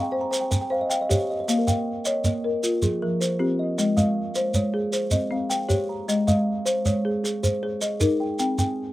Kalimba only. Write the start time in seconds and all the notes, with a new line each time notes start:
Already playing: C4 G#5
0.02 G5
0.11 G#5
0.21 A#5
0.31 G#5
0.41 G5
0.51 C5 G#5
0.61 G5
0.72 F5
0.81 D#5
0.92 F5
1.01 D#5
1.11 C5 C#5
1.21 C5
1.30 D#5
1.40 C#5
1.49 C5
1.58 A#4
1.67 A#3 G5
2.05 D#5
2.24 A#3 C#5
2.62 A#4
2.82 F3
3.02 A#4
3.21 F4
3.40 F4
3.59 D#5
3.97 G#3 F5
4.35 C#5
4.56 G#3 C5
4.93 G#4
5.13 C4
5.32 F5
5.51 C5
5.70 C5
5.89 A#5
6.28 G#3 F5
6.66 C#5
6.85 G#3 C5
7.24 G#4
7.43 G#4
7.63 C#5
7.81 G#4
8.00 G#4
8.20 G5
8.58 C4 G#5